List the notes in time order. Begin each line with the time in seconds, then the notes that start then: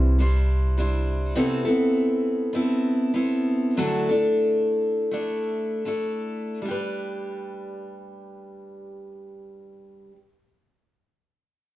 Already playing: C2 C3 E3 G3 D4 E4 C5
0.19 G3 D4 E4 C5
0.78 G3 D4 E4 C5
1.35 C3 E3 B3 C4 E4 A4
1.65 B3 C4 E4 A4
2.53 B3 C4 E4 A4
3.14 B3 C4 E4 A4
3.77 D3 F#3 A3 D4 E4 A4
4.09 A3 D4 E4 A4
5.11 A3 D4 E4 A4
5.85 A3 D4 E4 A4
6.62 G3 D4
6.68 G4 B4